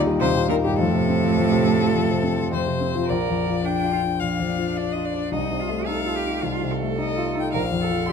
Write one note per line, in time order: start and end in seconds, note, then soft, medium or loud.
0.00 0.21 D#2 medium
0.00 0.36 A#2 medium
0.00 0.07 G3 medium
0.00 0.50 D#4 medium
0.07 0.30 G3 medium
0.20 0.77 D#2 medium
0.20 0.28 C3 medium
0.20 0.49 C5 loud
0.36 0.58 A#2 medium
0.49 0.55 A#2 medium
0.49 0.73 D#4 medium
0.49 0.55 A#4 medium
0.64 0.80 G2 medium
0.64 0.79 G3 soft
0.64 0.79 G4 medium
0.78 1.35 F2 medium
0.78 2.53 A2 medium
0.78 2.50 A4 medium
0.93 1.17 C3 soft
1.09 1.32 C4 medium
1.23 1.46 F3 soft
1.37 1.94 F2 medium
1.52 1.75 C3 medium
1.66 1.90 C4 soft
1.81 2.04 F3 medium
1.95 2.50 F2 medium
2.09 2.33 C3 soft
2.23 2.47 C4 soft
2.38 2.61 F3 soft
2.52 3.07 F2 medium
2.52 3.11 C5 medium
2.66 2.90 C3 soft
2.81 3.04 C4 medium
2.95 3.09 F3 medium
3.08 4.17 A#1 soft
3.08 3.60 A#4 medium
3.08 3.67 D5 medium
3.28 3.58 F2 soft
3.46 3.76 F3 soft
3.64 3.92 D4 soft
3.64 3.95 D4 soft
3.64 4.21 G5 medium
3.84 4.13 F4 soft
3.92 4.00 F4 soft
4.03 4.32 D4 soft
4.20 5.29 A#1 soft
4.20 5.34 D4 soft
4.20 4.78 F5 medium
4.40 4.69 F2 soft
4.59 4.88 F3 soft
4.76 5.06 D4 soft
4.76 4.94 D5 medium
4.92 5.25 F4 soft
4.92 5.07 D#5 medium
5.05 5.33 D5 medium
5.14 5.32 D4 soft
5.31 6.40 C2 soft
5.31 5.61 D#4 soft
5.31 5.87 D#5 medium
5.51 5.80 C3 soft
5.60 5.89 F4 soft
5.69 5.98 A3 soft
5.87 6.17 D#4 soft
5.87 6.17 A4 medium
5.87 6.70 F5 medium
6.06 6.36 F4 soft
6.16 6.45 G4 soft
6.25 6.55 D#4 soft
6.43 7.50 C2 soft
6.43 6.73 F4 soft
6.62 6.92 C3 soft
6.72 7.53 A4 medium
6.80 7.10 A3 soft
6.98 7.28 D#4 soft
6.98 7.37 D#5 medium
7.17 7.46 F4 soft
7.35 7.53 D#4 soft
7.40 7.52 G5 medium
7.53 8.12 A#1 medium
7.53 7.62 A#4 medium
7.53 8.07 F5 medium
7.71 8.01 F2 soft
7.82 8.11 A4 medium
7.90 8.12 F3 soft
8.08 8.12 D4 soft
8.08 8.12 G4 medium
8.08 8.12 C6 medium